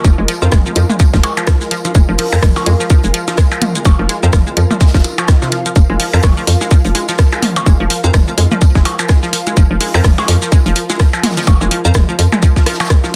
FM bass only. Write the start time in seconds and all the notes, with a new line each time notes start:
0.04 F1
0.18 F1
0.42 F2
0.52 F1
0.76 F2
1.14 F1
1.95 F1
2.09 F1
2.33 F2
2.43 F1
2.66 F2
3.04 F1
3.85 F1
3.99 F1
4.23 F2
4.33 F1
4.57 F2
4.94 F1
5.76 F1
5.90 F1
6.13 F2
6.24 F1
6.47 F2
6.85 F1
7.66 F1
7.80 F1
8.04 F2
8.14 F1
8.38 F2
8.75 F1
9.57 F1
9.71 F1
9.94 F2
10.04 F1
10.28 F2
10.66 F1
11.47 F1
11.61 F1
11.85 F2
11.95 F1
12.19 F2